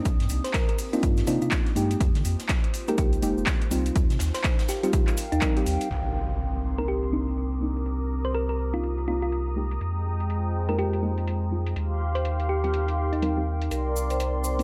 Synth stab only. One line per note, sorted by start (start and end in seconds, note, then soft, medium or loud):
0.00 0.89 A#3 medium
0.00 0.90 C4 medium
0.00 0.90 D4 medium
0.00 0.90 D#4 medium
0.93 1.25 A#3 medium
0.93 1.25 C4 medium
0.93 1.25 D4 medium
0.93 1.25 D#4 medium
1.27 1.74 A#3 medium
1.27 1.74 C4 medium
1.27 1.74 D4 medium
1.27 1.74 D#4 loud
1.75 2.84 G#3 medium
1.75 2.85 A#3 medium
1.75 2.85 D#4 medium
1.75 2.85 G4 medium
2.88 3.20 G#3 medium
2.88 3.20 A#3 medium
2.88 3.20 D#4 medium
2.88 3.20 G4 medium
3.22 3.69 G#3 medium
3.22 3.69 A#3 medium
3.22 3.69 D#4 medium
3.22 3.69 G4 loud
3.71 4.80 G3 medium
3.71 4.80 C4 medium
3.71 4.80 D#4 medium
3.71 4.80 F4 medium
4.83 5.15 G3 medium
4.83 5.15 C4 medium
4.83 5.15 D#4 medium
4.83 5.15 F4 medium
5.42 5.54 G3 medium
5.42 5.54 C4 medium
5.42 5.54 D#4 medium
5.42 5.55 A#4 loud
5.56 5.89 G3 medium
5.56 5.90 C4 medium
5.56 5.90 D#4 medium
5.56 5.90 G4 medium
6.78 7.10 A#3 medium
6.78 7.10 C4 medium
6.78 7.10 D4 medium
6.78 7.11 D#4 medium
7.12 7.59 A#3 medium
7.12 7.59 C4 medium
7.12 7.59 D4 medium
7.12 7.59 D#4 loud
7.61 8.70 A#3 medium
7.61 8.70 C4 medium
7.61 8.70 D4 medium
7.61 8.70 D#4 medium
8.73 9.05 A#3 medium
8.73 9.05 C4 medium
8.73 9.06 D4 medium
8.73 9.06 D#4 medium
9.07 9.54 A#3 medium
9.07 9.54 C4 medium
9.07 9.54 D4 medium
9.07 9.54 D#4 loud
9.56 10.65 G#3 medium
9.56 10.65 A#3 medium
9.56 10.65 D#4 medium
9.56 10.66 G4 medium
10.69 11.00 G#3 medium
10.69 11.01 A#3 medium
10.69 11.01 D#4 medium
10.69 11.01 G4 medium
11.03 11.49 G#3 medium
11.03 11.49 A#3 medium
11.03 11.49 D#4 medium
11.03 11.50 G4 loud
11.51 12.60 G3 medium
11.51 12.60 C4 medium
11.51 12.61 D#4 medium
11.51 12.61 F4 medium
12.64 12.96 G3 medium
12.64 12.96 C4 medium
12.64 12.96 D#4 medium
12.64 12.96 F4 medium
13.22 13.35 G3 medium
13.22 13.35 C4 medium
13.22 13.35 D#4 medium
13.22 13.35 A#4 loud
13.37 13.70 G3 medium
13.37 13.70 C4 medium
13.37 13.70 D#4 medium
13.37 13.70 G4 medium
14.59 14.63 A#3 medium
14.59 14.63 C4 medium
14.59 14.63 D4 medium
14.59 14.63 D#4 medium